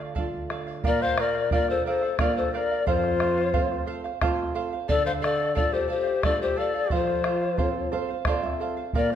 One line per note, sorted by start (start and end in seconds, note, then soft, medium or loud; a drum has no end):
0.00 0.81 D3 medium
0.00 0.15 A3 soft
0.00 0.15 D4 soft
0.00 0.15 F4 soft
0.00 0.15 D5 soft
0.00 0.15 F5 medium
0.00 bombo rim medium
0.15 0.83 A3 medium
0.15 0.83 D4 soft
0.15 0.83 F4 medium
0.15 0.48 A4 medium
0.15 0.49 D5 medium
0.15 0.50 F5 medium
0.15 bombo low medium
0.50 0.67 A4 medium
0.50 0.67 D5 medium
0.50 0.65 F5 medium
0.50 bombo rim medium
0.67 0.83 D5 soft
0.67 0.84 F5 medium
0.84 1.50 A#2 medium
0.84 1.17 A#4 medium
0.84 1.04 A#4 loud
0.84 1.17 D5 medium
0.84 1.04 D5 loud
0.84 1.18 F5 medium
0.84 bombo low medium
1.01 1.22 C5 medium
1.01 1.22 F5 loud
1.01 bombo rim soft
1.18 1.35 A#4 medium
1.18 1.53 A#4 medium
1.18 1.34 D5 medium
1.18 1.53 D5 medium
1.18 1.33 F5 medium
1.18 bombo rim medium
1.35 1.51 D5 soft
1.35 1.51 F5 medium
1.35 bombo rim soft
1.51 2.06 A#3 medium
1.51 2.06 D4 soft
1.51 2.06 F4 medium
1.51 1.85 A#4 medium
1.51 1.69 A#4 medium
1.51 1.86 D5 medium
1.51 1.68 D5 loud
1.51 1.86 F5 medium
1.51 bombo low medium
1.68 1.85 A4 medium
1.68 1.85 C5 medium
1.68 bombo rim soft
1.86 2.18 A4 medium
1.86 2.03 A#4 medium
1.86 2.17 C5 medium
1.86 2.02 D5 medium
1.86 2.01 F5 medium
2.02 2.19 D5 soft
2.02 2.19 F5 medium
2.02 bombo rim soft
2.18 2.73 A#3 medium
2.18 2.73 D4 medium
2.18 2.73 F4 medium
2.18 2.52 A#4 medium
2.18 2.36 A#4 medium
2.18 2.53 D5 medium
2.18 2.36 D5 medium
2.18 2.53 F5 medium
2.18 bombo rim medium
2.18 bombo low medium
2.37 2.52 A4 medium
2.37 2.52 C5 medium
2.53 2.70 A#4 medium
2.53 2.58 C5 medium
2.53 2.70 D5 medium
2.53 2.85 D5 medium
2.53 2.70 F5 medium
2.57 2.85 A#4 medium
2.71 2.86 D5 soft
2.71 2.86 F5 medium
2.86 3.52 F2 medium
2.86 3.84 F4 medium
2.86 3.19 A4 medium
2.86 3.20 C5 medium
2.86 3.84 C5 medium
2.86 3.20 F5 medium
2.86 bombo low medium
3.04 bombo rim soft
3.20 3.37 A4 medium
3.20 3.37 C5 medium
3.20 3.36 F5 medium
3.20 bombo rim medium
3.37 3.52 C5 soft
3.37 3.53 F5 medium
3.37 bombo rim soft
3.53 4.08 A3 medium
3.53 4.09 C4 soft
3.53 4.09 F4 medium
3.53 3.85 A4 medium
3.53 3.86 C5 medium
3.53 3.86 F5 medium
3.53 bombo low medium
3.72 bombo rim soft
3.86 4.04 A4 medium
3.86 4.04 C5 medium
3.86 4.03 F5 medium
4.04 4.21 C5 medium
4.04 4.21 F5 medium
4.04 bombo rim soft
4.21 4.75 A3 medium
4.21 4.76 C4 medium
4.21 4.76 F4 medium
4.21 4.53 A4 medium
4.21 4.54 C5 loud
4.21 4.55 F5 loud
4.21 bombo rim medium
4.21 bombo low medium
4.55 4.72 A4 medium
4.55 4.72 C5 medium
4.55 4.71 F5 medium
4.73 4.90 C5 soft
4.73 4.88 F5 medium
4.88 5.55 D3 medium
4.88 5.19 A4 medium
4.88 5.05 A4 medium
4.88 5.21 D5 medium
4.88 5.05 D5 loud
4.88 5.21 F5 medium
4.88 bombo low medium
5.06 5.12 C5 medium
5.06 5.12 F5 loud
5.06 bombo rim soft
5.21 5.38 A4 medium
5.21 5.54 A4 medium
5.21 5.38 D5 medium
5.21 5.54 D5 loud
5.21 5.36 F5 medium
5.21 bombo rim medium
5.38 5.54 D5 soft
5.38 5.55 F5 medium
5.38 bombo rim soft
5.55 6.10 A3 soft
5.55 6.11 D4 soft
5.55 6.11 F4 medium
5.55 5.86 A4 medium
5.55 5.74 A4 medium
5.55 5.87 D5 medium
5.55 5.75 D5 medium
5.55 5.89 F5 medium
5.55 bombo low medium
5.73 5.90 G4 medium
5.73 5.90 C5 medium
5.73 bombo rim soft
5.88 6.25 G4 medium
5.88 6.06 A4 medium
5.88 6.25 C5 medium
5.88 6.04 D5 medium
5.88 6.02 F5 medium
6.04 6.22 D5 soft
6.04 6.22 F5 medium
6.04 bombo rim soft
6.22 6.78 A3 medium
6.22 6.79 D4 medium
6.22 6.55 A4 medium
6.22 6.40 A4 medium
6.22 6.55 D5 medium
6.22 6.41 D5 loud
6.22 6.57 F5 medium
6.22 bombo rim medium
6.22 bombo low medium
6.26 6.79 F4 medium
6.41 6.59 G4 medium
6.41 6.60 C5 medium
6.56 6.73 A4 medium
6.56 6.93 A4 medium
6.56 6.74 D5 medium
6.56 6.96 D5 medium
6.56 6.73 F5 medium
6.74 6.90 D5 soft
6.74 6.91 F5 medium
6.90 7.57 F3 medium
6.90 7.92 F4 medium
6.90 7.23 A4 medium
6.90 7.24 C5 medium
6.90 7.24 F5 medium
6.90 bombo low medium
6.94 7.94 C5 medium
7.07 bombo rim soft
7.24 7.41 A4 medium
7.24 7.41 C5 medium
7.24 7.41 F5 medium
7.24 bombo rim medium
7.41 7.57 C5 soft
7.41 7.58 F5 medium
7.41 bombo rim soft
7.57 8.13 C4 medium
7.57 8.13 F4 soft
7.57 7.91 A4 medium
7.57 7.92 A4 medium
7.57 7.91 C5 medium
7.57 7.92 F5 medium
7.57 bombo rim soft
7.57 bombo low medium
7.92 8.09 A4 medium
7.92 8.08 C5 medium
7.92 8.24 C5 medium
7.92 8.07 F5 medium
7.92 bombo rim soft
8.09 8.26 C5 soft
8.09 8.25 F5 medium
8.25 8.80 C4 medium
8.25 8.81 F4 medium
8.25 8.59 A4 medium
8.25 8.81 A4 medium
8.25 8.60 C5 loud
8.25 8.60 F5 medium
8.25 bombo rim medium
8.25 bombo low medium
8.29 8.43 D5 medium
8.43 8.90 E5 medium
8.60 8.76 A4 medium
8.60 8.76 C5 medium
8.60 8.76 F5 medium
8.77 8.94 C5 soft
8.77 8.93 F5 medium
8.93 9.15 A#2 medium
8.93 9.15 A#4 medium
8.93 9.10 A#4 medium
8.93 9.15 D5 medium
8.93 9.10 D5 loud
8.93 9.15 F5 medium
8.93 bombo low medium
9.10 bombo rim soft